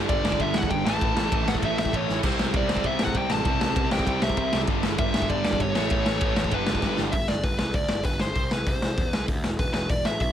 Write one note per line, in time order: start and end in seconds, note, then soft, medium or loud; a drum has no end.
0.00 0.23 G2 medium
0.00 0.24 D3 loud
0.00 0.23 G3 loud
0.09 0.20 G1 loud
0.09 0.41 D5 medium
0.09 kick loud
0.09 ride medium
0.24 0.35 G1 medium
0.24 0.86 G2 medium
0.24 0.85 D3 medium
0.24 0.85 G3 medium
0.24 snare loud
0.32 kick medium
0.40 0.51 G1 loud
0.40 0.57 E5 loud
0.40 kick medium
0.40 ride medium
0.54 0.66 E2 medium
0.54 0.70 F#5 loud
0.54 snare loud
0.63 kick medium
0.70 0.82 G1 medium
0.70 0.85 G5 loud
0.70 kick loud
0.70 ride medium
0.85 0.96 A1 loud
0.85 1.30 A2 loud
0.85 1.32 E3 loud
0.85 1.32 A3 loud
0.85 1.49 A5 loud
0.85 snare loud
1.01 1.12 A1 medium
1.01 kick loud
1.01 ride medium
1.16 1.27 A1 medium
1.16 snare loud
1.31 1.43 A1 loud
1.31 2.07 A2 medium
1.31 2.24 E3 medium
1.31 2.09 A3 medium
1.31 kick loud
1.31 ride loud
1.46 1.58 A1 medium
1.46 1.53 F#5 medium
1.46 snare loud
1.55 kick medium
1.62 1.74 A1 loud
1.62 1.78 E5 loud
1.62 kick loud
1.62 ride medium
1.77 1.88 A1 medium
1.77 1.96 E5 medium
1.77 snare loud
1.85 kick medium
1.92 2.04 A1 medium
1.92 2.07 A2 medium
1.92 2.24 E3 medium
1.92 2.08 A3 medium
1.92 kick loud
1.92 ride medium
1.96 2.18 C#5 medium
2.09 2.20 A1 medium
2.09 snare medium
2.22 2.34 C2 medium
2.22 2.68 C3 loud
2.22 2.69 G3 loud
2.22 2.66 C4 loud
2.22 kick loud
2.22 ride medium
2.22 crash loud
2.39 2.51 C2 medium
2.39 snare loud
2.54 2.65 C2 medium
2.54 2.87 D5 medium
2.54 kick loud
2.54 ride medium
2.67 2.82 C2 medium
2.67 3.43 C3 medium
2.67 3.45 G3 medium
2.67 3.44 C4 medium
2.67 snare loud
2.77 kick medium
2.84 2.96 C2 loud
2.84 3.03 E5 medium
2.84 kick medium
2.84 ride medium
2.99 3.12 A2 medium
2.99 3.17 F#5 loud
2.99 snare loud
3.07 kick medium
3.15 3.26 C2 loud
3.15 3.31 G5 loud
3.15 kick loud
3.15 ride medium
3.29 3.42 A1 medium
3.29 3.43 C3 medium
3.29 3.46 G3 medium
3.29 3.44 C4 medium
3.29 3.88 A5 loud
3.29 snare loud
3.44 3.57 C2 medium
3.44 3.90 C3 medium
3.44 3.91 G3 loud
3.44 3.90 C4 loud
3.44 kick loud
3.44 ride medium
3.61 3.73 C2 medium
3.61 snare loud
3.76 3.87 C2 loud
3.76 kick loud
3.76 ride medium
3.91 4.03 C2 medium
3.91 4.69 C3 medium
3.91 4.68 G3 medium
3.91 4.67 C4 medium
3.91 4.05 G5 medium
3.91 snare loud
3.99 kick medium
4.07 4.18 C2 loud
4.07 4.23 G5 loud
4.07 kick loud
4.07 ride medium
4.22 4.33 C2 medium
4.22 4.37 E5 medium
4.22 snare loud
4.29 kick loud
4.37 4.48 C2 loud
4.37 4.59 E5 medium
4.37 kick loud
4.37 ride medium
4.52 4.64 C2 loud
4.52 4.68 C3 medium
4.52 4.68 G3 medium
4.52 4.67 C4 medium
4.52 snare loud
4.67 4.79 G1 medium
4.67 5.13 G2 medium
4.67 5.14 D3 loud
4.67 5.13 G3 loud
4.67 kick loud
4.67 ride medium
4.83 4.95 G1 medium
4.83 snare loud
4.98 5.10 G1 loud
4.98 5.27 E5 loud
4.98 kick loud
4.98 ride medium
5.14 5.26 G1 loud
5.14 5.76 G2 medium
5.14 5.75 D3 medium
5.14 5.75 G3 medium
5.14 snare loud
5.22 kick loud
5.30 5.41 G1 loud
5.30 5.61 D5 loud
5.30 kick loud
5.30 ride medium
5.45 5.57 E2 medium
5.45 snare loud
5.53 kick medium
5.60 5.71 G1 medium
5.60 5.91 C#5 loud
5.60 kick loud
5.60 ride medium
5.75 5.87 A1 loud
5.75 6.20 A2 loud
5.75 6.21 E3 loud
5.75 6.22 A3 loud
5.75 snare loud
5.90 6.02 A1 medium
5.90 6.34 C#5 loud
5.90 kick loud
5.90 ride medium
6.06 6.17 A1 medium
6.06 snare loud
6.21 6.32 A1 loud
6.21 6.51 A2 medium
6.21 6.52 E3 medium
6.21 6.53 A3 medium
6.21 kick loud
6.21 ride medium
6.36 6.48 A1 medium
6.36 6.54 C#5 medium
6.36 snare loud
6.44 kick medium
6.51 6.63 G1 loud
6.51 6.97 G2 medium
6.51 6.98 D3 medium
6.51 6.99 B4 medium
6.51 kick medium
6.51 ride medium
6.55 6.96 G3 loud
6.67 6.79 G1 loud
6.67 snare loud
6.75 kick medium
6.82 6.93 G1 medium
6.82 kick loud
6.82 snare medium
6.97 7.10 G1 loud
6.97 7.14 G2 medium
6.97 7.13 D3 medium
6.97 7.12 G3 medium
6.97 snare loud
7.12 7.26 G1 medium
7.12 7.28 E5 loud
7.12 kick loud
7.12 open hi-hat medium
7.28 7.42 G1 medium
7.28 7.44 D5 loud
7.28 snare loud
7.43 7.57 G1 medium
7.43 7.58 B4 medium
7.43 kick loud
7.43 open hi-hat medium
7.59 7.73 C2 medium
7.59 7.74 B4 medium
7.59 snare loud
7.73 7.87 D2 medium
7.73 7.89 D5 loud
7.73 kick loud
7.73 open hi-hat medium
7.89 8.03 G1 medium
7.89 8.04 D5 medium
7.89 snare loud
8.04 8.31 G1 medium
8.04 8.20 B4 medium
8.04 kick loud
8.04 open hi-hat medium
8.19 8.51 C5 medium
8.19 snare loud
8.35 8.49 C2 medium
8.35 kick loud
8.35 open hi-hat medium
8.51 8.64 C2 medium
8.51 8.67 B4 medium
8.51 snare loud
8.66 8.79 C2 medium
8.66 9.09 C5 medium
8.66 kick loud
8.66 open hi-hat medium
8.82 8.95 C2 medium
8.82 snare loud
8.98 9.11 E2 loud
8.98 kick loud
8.98 open hi-hat medium
9.09 9.25 B4 medium
9.13 9.26 C2 medium
9.13 snare loud
9.28 9.41 D2 medium
9.28 kick loud
9.28 open hi-hat medium
9.44 9.57 E1 medium
9.44 snare loud
9.59 9.72 E1 medium
9.59 9.72 B4 loud
9.59 kick loud
9.59 open hi-hat medium
9.74 9.87 E1 medium
9.74 9.88 B4 loud
9.74 snare loud
9.89 10.02 E1 medium
9.89 10.04 D5 medium
9.89 kick loud
9.89 open hi-hat medium
10.05 10.18 A1 medium
10.05 10.20 E5 medium
10.05 snare loud
10.20 10.32 B1 medium
10.20 10.32 E5 loud
10.20 kick loud
10.20 open hi-hat medium